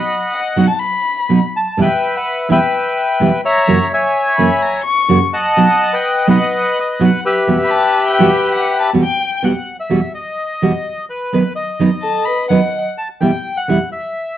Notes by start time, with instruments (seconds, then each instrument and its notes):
Already playing: bandoneon D#5 F#5 B5
0.32 violin F#5
0.56 nylon-string guitar B2 F#3 B3 D#4 F#4
0.67 violin A5
0.79 violin B5
1.29 nylon-string guitar B2 F#3 B3 D#4 F#4
1.56 bandoneon A5
1.77 nylon-string guitar E2 B2 E3 G3 B3 E4, bandoneon B4
1.81 bandoneon E5 G5
2.16 bandoneon B4 F#5
2.49 nylon-string guitar E2 B2 E3 G3 B3 E4, bandoneon B4 E5 G5
3.20 nylon-string guitar E2 B2 E3 G3 B3 E4
3.45 bandoneon C#5 E5 A#5
3.67 nylon-string guitar F#2 C#3 E3 A#3 C#4 F#4
3.93 bandoneon C#5 E5 G#5
4.36 nylon-string guitar F#2 C#3 E3 A#3 C#4 F#4, violin B5
4.62 violin A#5
4.84 violin C#6
5.09 nylon-string guitar F#2 C#3 E3 A#3 C#4 F#4
5.33 bandoneon D#5 F#5 A5
5.57 nylon-string guitar B2 F#3 B3 D#4 F#4
5.93 bandoneon B4 D#5 G5
6.27 nylon-string guitar B2 F#3 B3 D#4 F#4, bandoneon B4 D#5 F#5
6.80 bandoneon D#5
7.00 nylon-string guitar B2 F#3 B3 D#4 F#4, bandoneon F#5
7.25 bandoneon G4 B4 E5
7.48 nylon-string guitar E2 B2 E3 G3 B3 F#4
7.64 violin B5
7.71 violin A5
8.08 violin G5
8.19 nylon-string guitar E2 B2 E3 G3 B3 F#4
8.55 violin F#5
8.80 violin A5
8.93 nylon-string guitar E2 B2 E3 G3 B3 F#4
9.03 violin G5
9.21 bandoneon G5
9.43 nylon-string guitar E2 B2 E3 G3 B3 F#4, bandoneon F#5
9.80 bandoneon E5
9.90 nylon-string guitar E2 B2 E3 G3 B3 F#4
10.14 bandoneon D#5
10.62 nylon-string guitar E2 B2 E3 G3 B3 F#4
11.10 bandoneon B4
11.33 nylon-string guitar D#3 F#3 B3 D#4 B4
11.56 bandoneon D#5
11.79 nylon-string guitar D#3 F#3 B3 D#4 B4
12.03 vibraphone A4, violin A5
12.25 vibraphone B4, violin B5
12.49 nylon-string guitar D#3 F#3 B3 D#4 B4, vibraphone D#5, violin F#5
12.98 bandoneon A5
13.21 nylon-string guitar E2 B2 E3 G3 B3 E4, bandoneon G5
13.57 bandoneon F#5
13.68 nylon-string guitar E2 B2 E3 G3 B3 E4
13.92 bandoneon E5